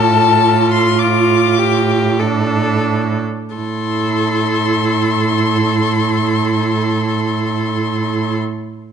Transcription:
Already playing: cello A2, viola F4, violin A4 A5
0.72 violin C6
0.99 violin F4 D6
1.58 violin G4
2.19 viola D4, violin A4
3.55 cello A2, viola E4, violin A4 C6

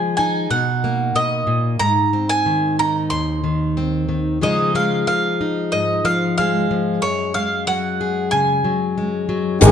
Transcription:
Already playing: steel-string acoustic guitar F3 G#3, mandolin G#5
0.17 steel-string acoustic guitar D#4, mandolin G#5
0.50 steel-string acoustic guitar B2, mandolin F#5
0.84 steel-string acoustic guitar A#3
1.15 steel-string acoustic guitar B2, mandolin D#5
1.47 steel-string acoustic guitar A#2
1.79 steel-string acoustic guitar G#2, mandolin A#5
2.13 steel-string acoustic guitar C4
2.29 mandolin G#5
2.46 steel-string acoustic guitar D#3
2.79 steel-string acoustic guitar D#4, mandolin A#5
3.10 steel-string acoustic guitar D#2, mandolin C6
3.44 steel-string acoustic guitar D#3
3.77 steel-string acoustic guitar C4
4.09 steel-string acoustic guitar D#3
4.41 steel-string acoustic guitar C#3 F3 G#3 D#4 F4, mandolin D#5
4.75 steel-string acoustic guitar G#3, mandolin F5
5.07 steel-string acoustic guitar F3, mandolin F5
5.41 steel-string acoustic guitar D#4
5.72 steel-string acoustic guitar G#2, mandolin D#5
6.05 steel-string acoustic guitar F3, mandolin F5
6.38 steel-string acoustic guitar G#3, mandolin F5
6.71 steel-string acoustic guitar F3
7.02 steel-string acoustic guitar F#2, mandolin C#5
7.34 steel-string acoustic guitar G#3, mandolin F5
7.67 steel-string acoustic guitar F#3, mandolin F#5
8.01 steel-string acoustic guitar G#4
8.31 steel-string acoustic guitar C#3, mandolin G#5
8.64 steel-string acoustic guitar F#3
8.98 steel-string acoustic guitar G#3
9.29 steel-string acoustic guitar F#3
9.61 picked electric bass G#1, steel-string acoustic guitar G#2 D#3 G#3 C#4 D#4 G#4, harmonium C#3 G#3 D#4, trumpet G#4, shaker

